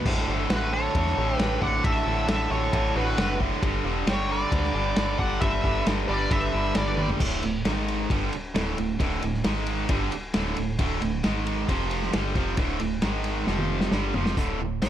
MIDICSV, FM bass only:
0, 0, Header, 1, 2, 480
1, 0, Start_track
1, 0, Tempo, 447761
1, 59, Time_signature, 4, 2, 24, 8
1, 15964, End_track
2, 0, Start_track
2, 0, Title_t, "FM bass"
2, 0, Program_c, 0, 39
2, 59, Note_on_c, 0, 33, 98
2, 268, Note_off_c, 0, 33, 0
2, 302, Note_on_c, 0, 31, 88
2, 509, Note_off_c, 0, 31, 0
2, 534, Note_on_c, 0, 33, 82
2, 953, Note_off_c, 0, 33, 0
2, 1016, Note_on_c, 0, 40, 97
2, 1225, Note_off_c, 0, 40, 0
2, 1258, Note_on_c, 0, 33, 101
2, 1466, Note_off_c, 0, 33, 0
2, 1491, Note_on_c, 0, 33, 103
2, 1702, Note_off_c, 0, 33, 0
2, 1735, Note_on_c, 0, 33, 87
2, 1944, Note_off_c, 0, 33, 0
2, 1976, Note_on_c, 0, 33, 91
2, 2184, Note_off_c, 0, 33, 0
2, 2211, Note_on_c, 0, 33, 85
2, 2421, Note_off_c, 0, 33, 0
2, 2444, Note_on_c, 0, 33, 91
2, 2657, Note_off_c, 0, 33, 0
2, 2683, Note_on_c, 0, 33, 92
2, 2896, Note_off_c, 0, 33, 0
2, 2929, Note_on_c, 0, 33, 99
2, 3139, Note_off_c, 0, 33, 0
2, 3163, Note_on_c, 0, 33, 102
2, 3376, Note_off_c, 0, 33, 0
2, 3399, Note_on_c, 0, 30, 103
2, 3822, Note_off_c, 0, 30, 0
2, 3887, Note_on_c, 0, 31, 102
2, 4098, Note_off_c, 0, 31, 0
2, 4118, Note_on_c, 0, 28, 97
2, 4332, Note_off_c, 0, 28, 0
2, 4360, Note_on_c, 0, 31, 83
2, 4782, Note_off_c, 0, 31, 0
2, 4844, Note_on_c, 0, 38, 100
2, 5055, Note_off_c, 0, 38, 0
2, 5082, Note_on_c, 0, 31, 104
2, 5294, Note_off_c, 0, 31, 0
2, 5325, Note_on_c, 0, 31, 94
2, 5535, Note_off_c, 0, 31, 0
2, 5563, Note_on_c, 0, 31, 88
2, 5774, Note_off_c, 0, 31, 0
2, 5804, Note_on_c, 0, 31, 97
2, 6015, Note_off_c, 0, 31, 0
2, 6047, Note_on_c, 0, 31, 96
2, 6257, Note_off_c, 0, 31, 0
2, 6291, Note_on_c, 0, 31, 97
2, 6499, Note_off_c, 0, 31, 0
2, 6527, Note_on_c, 0, 31, 93
2, 6736, Note_off_c, 0, 31, 0
2, 6760, Note_on_c, 0, 31, 94
2, 6973, Note_off_c, 0, 31, 0
2, 7005, Note_on_c, 0, 31, 93
2, 7216, Note_off_c, 0, 31, 0
2, 7248, Note_on_c, 0, 31, 100
2, 7667, Note_off_c, 0, 31, 0
2, 7721, Note_on_c, 0, 26, 98
2, 7947, Note_off_c, 0, 26, 0
2, 7969, Note_on_c, 0, 26, 79
2, 8192, Note_off_c, 0, 26, 0
2, 8206, Note_on_c, 0, 32, 86
2, 8654, Note_off_c, 0, 32, 0
2, 8686, Note_on_c, 0, 31, 95
2, 8910, Note_off_c, 0, 31, 0
2, 8928, Note_on_c, 0, 26, 47
2, 9152, Note_off_c, 0, 26, 0
2, 9166, Note_on_c, 0, 26, 106
2, 9391, Note_off_c, 0, 26, 0
2, 9407, Note_on_c, 0, 26, 81
2, 9631, Note_off_c, 0, 26, 0
2, 9647, Note_on_c, 0, 26, 97
2, 9871, Note_off_c, 0, 26, 0
2, 9892, Note_on_c, 0, 26, 84
2, 10114, Note_off_c, 0, 26, 0
2, 10132, Note_on_c, 0, 32, 91
2, 10578, Note_off_c, 0, 32, 0
2, 10606, Note_on_c, 0, 31, 105
2, 10831, Note_off_c, 0, 31, 0
2, 10851, Note_on_c, 0, 26, 42
2, 11074, Note_off_c, 0, 26, 0
2, 11091, Note_on_c, 0, 26, 113
2, 11314, Note_off_c, 0, 26, 0
2, 11337, Note_on_c, 0, 26, 85
2, 11558, Note_off_c, 0, 26, 0
2, 11567, Note_on_c, 0, 26, 96
2, 11792, Note_off_c, 0, 26, 0
2, 11813, Note_on_c, 0, 26, 85
2, 12036, Note_off_c, 0, 26, 0
2, 12058, Note_on_c, 0, 32, 86
2, 12502, Note_off_c, 0, 32, 0
2, 12526, Note_on_c, 0, 29, 96
2, 12975, Note_off_c, 0, 29, 0
2, 13015, Note_on_c, 0, 31, 111
2, 13233, Note_off_c, 0, 31, 0
2, 13239, Note_on_c, 0, 29, 93
2, 13469, Note_off_c, 0, 29, 0
2, 13481, Note_on_c, 0, 26, 96
2, 13710, Note_off_c, 0, 26, 0
2, 13725, Note_on_c, 0, 26, 73
2, 13952, Note_off_c, 0, 26, 0
2, 13963, Note_on_c, 0, 32, 81
2, 14414, Note_off_c, 0, 32, 0
2, 14444, Note_on_c, 0, 29, 103
2, 14895, Note_off_c, 0, 29, 0
2, 14918, Note_on_c, 0, 31, 97
2, 15149, Note_off_c, 0, 31, 0
2, 15161, Note_on_c, 0, 29, 94
2, 15391, Note_off_c, 0, 29, 0
2, 15407, Note_on_c, 0, 26, 93
2, 15634, Note_off_c, 0, 26, 0
2, 15644, Note_on_c, 0, 26, 79
2, 15872, Note_off_c, 0, 26, 0
2, 15885, Note_on_c, 0, 32, 84
2, 15964, Note_off_c, 0, 32, 0
2, 15964, End_track
0, 0, End_of_file